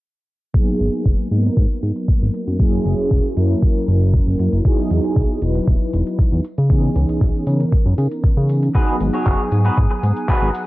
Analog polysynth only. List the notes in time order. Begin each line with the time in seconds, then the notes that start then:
0.53 F#3 A#3 B3 D#4 G#4
1.31 F#3 A#3 B3 D#4 A#4
2.59 F#3 A#3 C#4 E4 G#4
3.36 F#3 A#3 C#4 E4 A#4
4.64 F#3 B3 D#4 E4 G#4
5.41 F#3 B3 D#4 E4 B4
6.69 E3 B3 C#4 D#4 G#4
7.46 E3 B3 C#4 D#4 A#4
8.74 F#3 B3 D#4 G#4
9.51 F#3 B3 D#4 A#5